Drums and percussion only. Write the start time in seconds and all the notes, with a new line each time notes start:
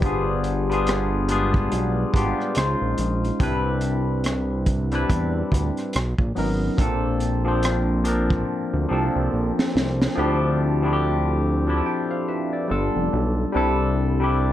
0.02 kick, closed hi-hat
0.44 closed hi-hat
0.72 closed hi-hat
0.87 cross-stick, closed hi-hat
1.29 closed hi-hat
1.54 kick, cross-stick
1.72 closed hi-hat
2.14 kick, closed hi-hat
2.40 cross-stick
2.55 cross-stick, closed hi-hat
2.98 closed hi-hat
3.25 closed hi-hat
3.40 kick, closed hi-hat
3.81 closed hi-hat
4.24 cross-stick, closed hi-hat
4.66 kick, closed hi-hat
4.92 cross-stick, closed hi-hat
5.10 kick, closed hi-hat
5.52 kick, closed hi-hat
5.77 cross-stick, closed hi-hat
5.93 cross-stick, closed hi-hat
6.18 kick
6.36 open hi-hat
6.78 kick, closed hi-hat
7.20 closed hi-hat
7.63 cross-stick, closed hi-hat
8.05 closed hi-hat
8.30 kick, cross-stick
9.59 snare
9.77 snare
10.02 snare